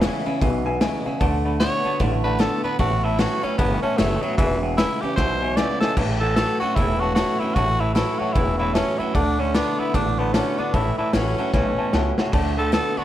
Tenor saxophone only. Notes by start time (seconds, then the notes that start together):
1.60 C#5
2.24 B4
2.41 A4
2.64 B4
2.80 F#4
3.05 E4
3.20 F#4
3.44 C#4
3.58 B3
3.83 C#4
3.98 A3
4.23 F#3
4.38 E3
4.78 E4
5.02 G4
5.16 C5
5.56 D5
5.81 A4
6.20 A4
6.36 A4
6.60 F#4
6.76 E4
7.00 F#4
7.15 F#4
7.40 E4
7.55 F#4
7.81 E4
7.95 E4
8.19 F#4
8.34 E4
8.59 E4
8.74 C#4
8.98 E4
9.15 D4
9.40 C#4
9.55 D4
9.79 E4
9.95 D4
10.19 B3
10.34 C#4
10.58 D4
10.74 E4
10.98 E4
11.14 C#4
11.54 C#4
12.59 A4
12.74 A4
12.98 F#4